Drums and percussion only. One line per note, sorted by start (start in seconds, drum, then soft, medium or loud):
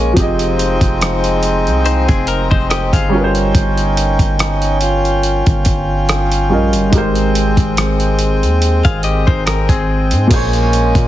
0.17 kick loud
0.17 closed hi-hat medium
0.39 closed hi-hat soft
0.59 closed hi-hat medium
0.81 kick medium
0.81 closed hi-hat soft
1.01 cross-stick loud
1.01 closed hi-hat medium
1.24 closed hi-hat soft
1.43 closed hi-hat medium
1.67 closed hi-hat soft
1.86 closed hi-hat medium
2.09 kick medium
2.09 closed hi-hat soft
2.27 closed hi-hat medium
2.51 kick medium
2.71 cross-stick loud
2.71 closed hi-hat medium
2.93 kick medium
2.93 closed hi-hat medium
3.35 closed hi-hat medium
3.55 kick loud
3.55 closed hi-hat medium
3.78 closed hi-hat soft
3.97 closed hi-hat medium
4.19 kick medium
4.19 closed hi-hat soft
4.39 cross-stick loud
4.39 closed hi-hat medium
4.62 closed hi-hat medium
4.81 closed hi-hat medium
5.05 closed hi-hat soft
5.23 closed hi-hat medium
5.46 kick medium
5.46 closed hi-hat soft
5.65 kick medium
5.65 closed hi-hat medium
6.09 cross-stick loud
6.09 closed hi-hat medium
6.32 closed hi-hat medium
6.73 closed hi-hat medium
6.93 kick loud
6.93 closed hi-hat medium
7.15 closed hi-hat soft
7.35 closed hi-hat medium
7.57 kick medium
7.57 closed hi-hat soft
7.77 cross-stick loud
7.77 closed hi-hat medium
8.00 closed hi-hat soft
8.19 closed hi-hat medium
8.43 closed hi-hat soft
8.62 closed hi-hat medium
8.85 kick medium
8.85 closed hi-hat soft
9.03 closed hi-hat medium
9.28 kick medium
9.47 cross-stick loud
9.47 closed hi-hat medium
9.69 kick medium
9.69 closed hi-hat soft
10.11 closed hi-hat medium
10.31 kick loud
10.31 closed hi-hat medium
10.31 crash medium
10.53 closed hi-hat medium
10.73 closed hi-hat medium
10.95 kick medium
10.95 closed hi-hat soft